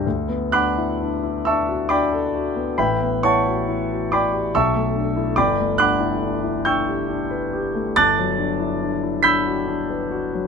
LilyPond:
\new Staff \with { instrumentName = "Grand piano" } { \time 3/4 \key d \major \tempo 4 = 69 << { r8 <fis'' b'' d''' fis'''>4 <e'' a'' cis''' e'''>8 <d'' g'' b'' d'''>4 | <b' e'' g'' b''>8 <cis'' fis'' a'' cis'''>4 <d'' g'' b'' d'''>8 <e'' a'' cis''' e'''>4 | <d'' g'' b'' d'''>8 <fis'' b'' d''' fis'''>4 <g'' cis''' e''' g'''>4. | <a'' d''' fis''' a'''>4. <b'' e''' g''' b'''>4. | } \\ { d,16 b16 d'16 e'16 d'16 e'16 d'16 fis'16 d'16 a'16 fis'16 b16 | a,,16 b16 e'16 fis'16 e'16 fis'16 e'16 g'16 b,,16 a16 d'16 e'16 | g,,16 a16 d'16 e'16 d'16 e'16 d'16 g'16 d'16 b'16 g'16 a16 | g,,16 fis16 d'16 e'16 d'16 e'16 d'16 fis'16 d'16 b'16 fis'16 fis16 | } >> }